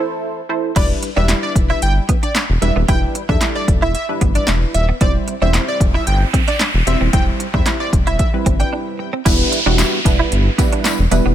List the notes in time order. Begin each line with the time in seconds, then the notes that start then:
Already playing: E4 A4 C5
0.49 E4 A4 C5
0.76 E1 G3 D4 E4 B4 D5, kick, closed hi-hat, crash
1.03 muted clean electric guitar stroke, closed hi-hat
1.16 E1 G3 D4 E4 B4 E5
1.28 E4, snare, clap, closed hi-hat
1.43 D5, muted clean electric guitar stroke
1.56 E1, kick, closed hi-hat
1.70 E4 E5
1.82 G1 G5, muted clean electric guitar stroke, closed hi-hat
2.09 B3, kick, closed hi-hat
2.23 D4 D5, closed hi-hat
2.35 D4, snare, clap, closed hi-hat
2.49 E1
2.62 E1 G3 D4 E4 B4 E5, muted clean electric guitar stroke, closed hi-hat
2.76 D#1 B3
2.88 E1 G3 D4 E4 B4 G5, kick, closed hi-hat
3.15 muted clean electric guitar stroke, closed hi-hat
3.29 E2 G3 D4 E4 A4 E5, kick
3.41 E4, snare, clap, closed hi-hat
3.55 D5, muted clean electric guitar stroke
3.68 E1, kick, closed hi-hat
3.82 E4 E5
3.95 E5, muted clean electric guitar stroke, closed hi-hat
4.09 G3 D4 E4 B4
4.21 G1 B3, kick, closed hi-hat
4.35 D4 D5, closed hi-hat
4.47 E1 D4, snare, clap, closed hi-hat
4.74 D#1 E5, muted clean electric guitar stroke, closed hi-hat
4.89 B3
5.01 E1 G3 C4 E4 C5 D5, kick, closed hi-hat, noise sweep
5.28 muted clean electric guitar stroke, closed hi-hat
5.42 E1 G3 C4 D4 E4 C5 E5
5.53 E4, snare, clap, closed hi-hat
5.68 D5, muted clean electric guitar stroke
5.80 E1, kick, closed hi-hat
5.94 E4 E5
6.07 G1 G5, muted clean electric guitar stroke, closed hi-hat
6.33 C4, kick, closed hi-hat
6.48 D4 D5, closed hi-hat
6.59 D4, snare, clap, closed hi-hat
6.74 E1
6.87 E1 G3 C4 E4 C5 E5, muted clean electric guitar stroke, closed hi-hat
7.01 D#1 C4
7.13 E1 G3 C4 E4 C5 G5, kick, closed hi-hat
7.40 muted clean electric guitar stroke, closed hi-hat
7.54 E2 G3 C4 D4 E4 C5 E5, kick
7.66 E4, snare, clap, closed hi-hat
7.80 D5, muted clean electric guitar stroke
7.93 E1, kick, closed hi-hat
8.07 E4 E5, closed hi-hat
8.19 E5, muted clean electric guitar stroke, kick, closed hi-hat
8.33 G3 C4 E4 B4
8.46 G1 C4, kick, closed hi-hat
8.60 D4 G5, closed hi-hat
8.73 D4
8.99 muted clean electric guitar stroke
9.13 C4
9.25 E1 G3 B3 D4 E4 B4, kick, closed hi-hat, crash, tambourine, downlifter
9.52 muted clean electric guitar stroke, closed hi-hat, tambourine
9.66 E1 G3 B3 D4 E4 F#4
9.78 E4, snare, clap, closed hi-hat, tambourine
9.93 muted clean electric guitar stroke
10.05 E1 G3 B3 D4 E4 B4, kick, closed hi-hat, tambourine
10.19 E4
10.32 G1, muted clean electric guitar stroke, closed hi-hat
10.58 G3 B3 D4 E4 B4, kick, closed hi-hat, tambourine
10.72 D4, closed hi-hat
10.84 D4, snare, clap, closed hi-hat, tambourine
10.99 E1
11.11 E1 G3 B3 D4 E4 B4, muted clean electric guitar stroke, closed hi-hat, tambourine
11.26 D#1 B3